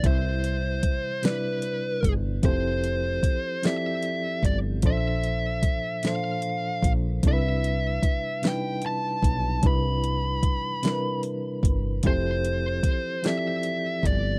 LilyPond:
<<
  \new Staff \with { instrumentName = "Lead electric guitar" } { \time 6/8 \key c \major \tempo 4. = 50 c''4. b'4 r8 | c''4. e''4 d''8 | e''4. f''4 r8 | e''4. g''8 a''4 |
b''2 r4 | c''4. e''4 d''8 | }
  \new Staff \with { instrumentName = "Reed electric piano" } { \time 6/8 \key c \major <c g e' c'' e''>4 r8 <c g d' e' b' d''>4 r8 | <f c' e' g' a' c''>4 r8 <f c' e' g' a' d''>4 r8 | <bes, f des' d' a' c''>4 r8 <bes, f d' a' c''>4 r8 | <c g d' e' a' b'>4 r8 <c g d' ees' e' b'>4 r8 |
<c g d' e' b'>4 r8 <c g d' e' bes' b'>4 r8 | <f c' e' g' a' c''>4 r8 <f c' e' g' a' d''>4 r8 | }
  \new Staff \with { instrumentName = "Fretless electric bass" } { \clef bass \time 6/8 \key c \major c,4 r4. g,,8 | f,,4 r4. g,,8 | bes,,4 r4. bes,,8 | c,4 r4. b,,8 |
c,4 r4. g,,8 | f,,4 r4. g,,8 | }
  \new DrumStaff \with { instrumentName = "Drums" } \drummode { \time 6/8 <hh bd>8 hh8 <hh bd>8 <hh sn>8 hh8 <hh bd>8 | <hh bd>8 hh8 <hh bd>8 <hh sn>8 hh8 <hh bd>8 | <hh bd>8 hh8 <hh bd>8 <hh sn>8 hh8 <hh bd>8 | <hh bd>8 hh8 <hh bd>8 <hh sn>8 hh8 <hh bd>8 |
<hh bd>8 hh8 <hh bd>8 <hh sn>8 hh8 <hh bd>8 | <hh bd>8 hh8 <hh bd>8 <hh sn>8 hh8 <hh bd>8 | }
>>